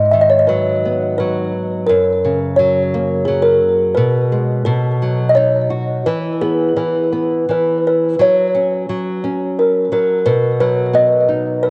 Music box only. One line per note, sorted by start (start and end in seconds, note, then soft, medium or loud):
0.11 0.21 E5 medium
0.21 0.30 D#5 medium
0.30 0.39 C#5 medium
0.39 0.49 D#5 medium
0.47 1.15 B4 medium
1.18 1.91 B4 medium
1.86 2.59 A#4 medium
2.56 3.29 C#5 medium
3.25 3.44 G#4 medium
3.42 3.98 A#4 medium
3.95 4.68 B4 medium
4.65 5.25 A4 medium
5.29 5.37 D#5 medium
5.35 6.08 C#5 medium
6.06 6.43 B4 medium
6.41 6.78 G#4 medium
6.77 7.50 B4 medium
7.51 7.86 B4 medium
7.87 8.22 B4 medium
8.21 9.63 C#5 medium
9.59 9.92 A#4 medium
9.93 10.28 A#4 medium
10.26 10.59 B4 medium
10.61 10.96 B4 medium
10.95 11.65 D#5 medium
11.63 11.70 B4 medium